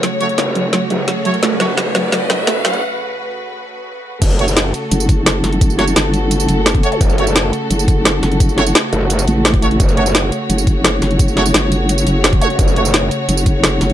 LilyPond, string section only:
\new Staff \with { instrumentName = "String section" } { \time 4/4 \key fis \minor \tempo 4 = 172 << { cis''1 | b'1~ | b'1 | a'1~ |
a'1~ | a'1~ | a'1 | cis''1~ |
cis''1~ | cis''1 | } \\ { <cis a fis'>1~ | <cis a fis'>1~ | <cis a fis'>1 | <cis a fis'>1~ |
<cis a fis'>1~ | <cis a fis'>1~ | <cis a fis'>1~ | <cis a fis'>1~ |
<cis a fis'>1~ | <cis a fis'>1 | } >> }